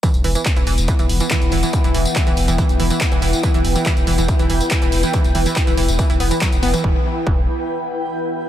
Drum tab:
HH |xxoxxxoxxxoxxxox|xxoxxxoxxxoxxxox|xxoxxxoxxxoxxxo-|xxoxxxoxxxo-xxox|
TB |xx-x-x-xxx-xxx-x|xx-xxx-xxx-xxx-x|xx-xxx-xxx-xxx-x|xx-x-x-xxx-xxx-x|
CP |----x-------x---|----x-------x---|----x-------x---|----x-------x---|
BD |o---o---o---o---|o---o---o---o---|o---o---o---o---|o---o---o---o---|

HH |----------------|
TB |----------------|
CP |----------------|
BD |o---o-----------|